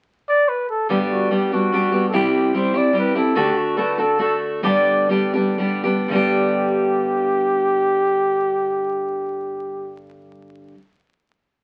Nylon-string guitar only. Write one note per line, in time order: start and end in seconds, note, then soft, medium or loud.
0.89 1.31 G2 medium
0.89 1.32 D3 medium
0.89 1.30 G3 medium
0.89 1.30 B3 medium
0.89 1.31 D4 medium
0.89 1.32 G4 medium
1.31 1.52 G3 soft
1.31 1.52 B3 soft
1.31 1.51 D4 soft
1.31 1.51 G4 soft
1.52 1.71 G3 soft
1.52 1.71 B3 soft
1.52 1.72 D4 soft
1.52 1.72 G4 soft
1.72 1.92 G3 soft
1.72 1.92 B3 soft
1.72 1.92 D4 medium
1.72 1.91 G4 medium
1.92 2.12 G3 soft
1.92 2.13 B3 soft
1.92 2.13 D4 soft
1.92 2.13 G4 soft
2.13 2.54 C3 medium
2.13 2.52 G3 medium
2.13 2.53 C4 medium
2.13 2.54 E4 medium
2.13 2.54 G4 medium
2.53 2.75 G3 soft
2.53 2.74 C4 soft
2.53 2.74 E4 medium
2.53 2.73 G4 soft
2.74 2.93 C4 soft
2.74 2.93 E4 soft
2.74 2.94 G4 soft
2.93 3.15 G3 soft
2.93 3.15 C4 soft
2.93 3.14 E4 medium
2.93 3.14 G4 medium
3.15 3.36 C4 soft
3.15 3.36 E4 soft
3.15 3.36 G4 soft
3.35 4.63 D3 medium
3.35 3.76 A3 medium
3.35 3.77 D4 medium
3.35 3.77 F#4 medium
3.35 3.77 A4 medium
3.77 3.99 A3 medium
3.77 3.98 D4 medium
3.77 3.97 F#4 medium
3.77 3.97 A4 medium
3.98 4.18 D4 soft
3.98 4.19 F#4 soft
3.98 4.19 A4 soft
4.19 4.63 A3 soft
4.19 4.63 D4 soft
4.19 4.63 F#4 medium
4.19 4.64 A4 medium
4.63 5.09 G2 medium
4.63 6.10 D3 medium
4.63 5.09 G3 medium
4.63 5.09 B3 medium
4.63 5.10 D4 medium
4.63 5.11 G4 medium
5.09 5.33 G3 medium
5.09 5.34 B3 soft
5.09 5.33 D4 medium
5.09 5.32 G4 medium
5.34 5.57 G3 soft
5.34 5.58 B3 soft
5.34 5.58 D4 soft
5.34 5.58 G4 soft
5.58 5.84 G3 soft
5.58 5.84 B3 medium
5.58 5.83 D4 soft
5.58 5.82 G4 medium
5.84 6.10 G3 soft
5.84 6.10 B3 soft
5.84 6.10 D4 soft
5.84 6.10 G4 soft
6.08 10.73 G2 medium
6.08 10.74 D3 medium
6.08 10.75 G3 medium
6.13 10.76 B3 medium
6.13 10.76 D4 medium
6.13 10.77 G4 medium